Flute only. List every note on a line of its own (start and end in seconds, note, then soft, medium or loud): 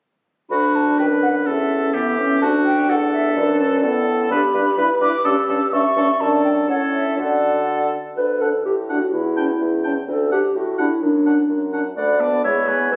0.51 0.77 B5 medium
0.76 0.99 A5 medium
0.99 1.05 G5 medium
1.23 1.29 F#5 medium
1.47 2.17 E5 medium
2.42 2.48 A5 medium
2.65 2.91 G5 medium
2.90 3.12 F#5 medium
3.12 3.39 E5 medium
3.37 4.07 D5 medium
4.30 4.98 B5 loud
5.02 5.27 D6 loud
5.26 5.74 E6 medium
5.73 6.22 C#6 medium
6.21 6.44 A5 medium
6.45 6.51 G5 medium
6.69 6.75 F#5 medium
6.93 7.17 E5 medium
7.18 7.91 D5 medium
8.41 8.47 A5 soft
8.89 8.95 A5 soft
9.36 9.42 A5 soft
9.85 9.91 A5 soft
10.32 10.38 A5 medium
10.79 10.85 A5 medium
11.26 11.32 A5 medium
11.74 11.80 A5 medium
11.97 12.22 B5 medium
12.20 12.44 A5 soft
12.45 12.70 B5 medium
12.69 12.92 G#5 soft
12.92 12.96 B5 soft